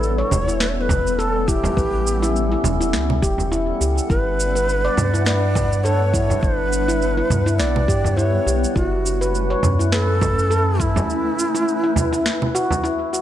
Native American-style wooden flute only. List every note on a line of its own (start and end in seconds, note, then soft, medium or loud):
0.00 0.33 A4 loud
0.32 0.62 C#5 loud
0.61 0.70 B4 loud
0.69 0.77 C#5 medium
0.77 0.82 C#5 loud
0.81 1.21 B4 loud
1.19 1.49 A4 loud
1.48 2.64 G4 medium
4.10 5.22 B4 loud
5.26 5.85 D5 loud
5.84 6.43 C#5 loud
6.42 7.57 B4 loud
7.58 8.18 D5 loud
8.17 8.77 C#5 loud
8.76 9.66 F#4 medium
9.92 10.82 A4 loud
10.80 12.84 E4 loud